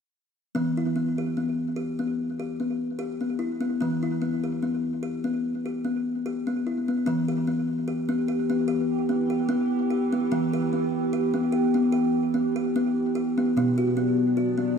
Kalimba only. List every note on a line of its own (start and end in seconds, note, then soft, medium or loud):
0.55 3.78 E3 medium
0.55 0.77 B3 medium
0.77 0.97 E4 soft
0.96 1.18 B3 medium
1.18 1.37 G4 soft
1.37 1.78 B3 medium
1.76 1.99 G4 medium
1.99 2.40 B3 soft
2.40 2.59 G4 medium
2.60 3.01 B3 soft
2.99 3.22 G4 medium
3.21 3.41 B3 soft
3.39 3.62 E4 soft
3.61 3.79 B3 medium
3.81 7.04 E3 medium
3.81 4.03 B3 medium
4.03 4.22 E4 soft
4.22 4.44 B3 medium
4.44 4.63 G4 soft
4.63 5.04 B3 medium
5.03 5.25 G4 medium
5.24 5.66 B3 medium
5.66 5.85 G4 soft
5.85 6.26 B3 medium
6.26 6.48 G4 medium
6.47 6.67 B3 medium
6.67 6.89 E4 soft
6.88 7.05 B3 medium
7.06 10.28 E3 medium
7.06 7.29 B3 medium
7.28 7.48 G4 medium
7.47 7.89 B3 medium
7.88 8.10 G4 medium
8.09 8.29 B3 medium
8.28 8.51 G4 medium
8.50 8.69 B3 medium
8.68 9.10 G4 medium
9.09 9.32 B3 medium
9.30 9.50 G4 medium
9.49 9.91 B3 medium
9.90 10.13 G4 medium
10.13 10.30 B3 medium
10.32 13.51 E3 medium
10.32 10.54 B3 medium
10.53 10.73 G4 medium
10.73 11.13 B3 medium
11.13 11.35 G4 medium
11.34 11.53 B3 medium
11.52 11.75 G4 medium
11.74 11.94 B3 medium
11.92 12.34 G4 medium
12.34 12.56 B3 medium
12.56 12.75 G4 medium
12.76 13.16 B3 medium
13.15 13.37 G4 medium
13.38 13.56 B3 medium
13.57 14.78 B2 medium
13.57 13.78 B3 medium
13.78 13.96 F#4 medium
13.97 14.37 B3 medium
14.37 14.58 F#4 medium
14.58 14.76 B3 medium